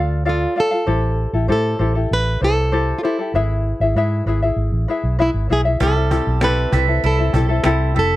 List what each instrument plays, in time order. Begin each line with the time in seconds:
Already playing: fingered electric bass D2, ukulele F4 A4 D5 F5
0.25 ukulele F4 A4 D5 F5, nylon-string guitar F4
0.56 ukulele F4 A4 D5 F5
0.60 nylon-string guitar A4
0.71 ukulele F4 A4 F5
0.86 fingered electric bass A1, ukulele E4 G4 A4 C5
1.33 fingered electric bass A1, ukulele E4 G4 A4
1.48 fingered electric bass A2, ukulele E4 G4 A4 C5, nylon-string guitar A4
1.79 fingered electric bass A1, ukulele E4 G4 A4 C5
1.95 ukulele E4 G4 A4
2.11 fingered electric bass A1, nylon-string guitar B4
2.41 fingered electric bass C2, ukulele E4 G4 A4 C5, nylon-string guitar A4
2.72 ukulele E4 G4 A4 C5
2.99 nylon-string guitar F4
3.03 ukulele E4 G4 A4 C5, nylon-string guitar E4
3.19 ukulele E4 G4 A4
3.34 fingered electric bass G#1, ukulele E4 G#4 B4 E5
3.80 fingered electric bass G#1, ukulele E4 G#4 E5
3.96 fingered electric bass G#2, ukulele E4 G#4 B4 E5
4.26 fingered electric bass G#1, ukulele E4 G#4 B4 E5
4.42 ukulele E4 G#4 E5
4.56 fingered electric bass G#1
4.72 fingered electric bass A1
4.88 ukulele E4 G#4 B4 E5
5.04 fingered electric bass B1
5.19 ukulele E4 G#4 B4 E5, nylon-string guitar E4
5.34 fingered electric bass G#1
5.49 fingered electric bass B1, ukulele E4 G#4 B4 E5, nylon-string guitar G#4
5.65 ukulele E4 G#4 E5
5.80 fingered electric bass C2, mandolin G3, ukulele C4 E4 G4 A4, nylon-string guitar A4, cajon bass
5.95 ukulele C4 E4 A4
6.10 ukulele C4 E4 G4 A4, mandolin A4, cajon bass
6.27 fingered electric bass B1
6.41 ukulele C4 E4 G4 A4, mandolin E4, nylon-string guitar B4, cajon slap
6.72 fingered electric bass C2, ukulele C4 E4 G4 A4, mandolin E5, cajon bass
6.88 ukulele C4 E4 A4
7.03 fingered electric bass C2, mandolin E4, nylon-string guitar A4, cajon slap
7.18 ukulele C4 E4 A4
7.33 fingered electric bass B1, ukulele C4 E4 G4 A4, mandolin A4, cajon bass
7.49 ukulele C4 E4 A4
7.64 fingered electric bass C2, ukulele C4 E4 G4 A4, mandolin E4, cajon slap
7.81 cajon slap
7.94 fingered electric bass F1, ukulele C4 E4 G4 A4, mandolin E5
7.99 nylon-string guitar A4
8.11 cajon slap